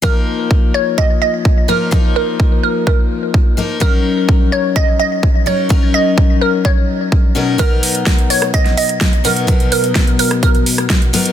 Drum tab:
HH |----------------|----------------|----------------|----------------|
SD |----------------|----------------|----------------|----------------|
BD |o---o---o---o---|o---o---o---o---|o---o---o---o---|o---o---o---o---|

HH |x-oxxxoxxxoxxxox|xxoxxxoxxxoxxxox|
SD |----o--r-o--o---|----o--r---ro---|
BD |o---o---o---o---|o---o---o---o---|